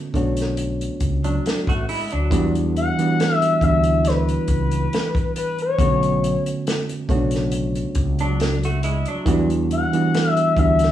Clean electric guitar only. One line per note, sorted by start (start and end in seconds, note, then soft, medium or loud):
1.24 1.66 F#3 medium
1.24 1.66 D4 medium
1.69 1.87 A3 medium
1.69 1.87 F#4 medium
1.89 2.11 G#3 medium
1.89 2.11 E4 medium
2.12 2.53 F#3 medium
2.12 2.53 D4 medium
8.21 8.62 F#3 medium
8.21 8.61 D4 medium
8.65 8.83 A3 medium
8.65 8.83 F#4 medium
8.84 9.06 G#3 medium
8.84 9.06 E4 medium
9.08 9.49 F#3 medium
9.08 9.49 D4 medium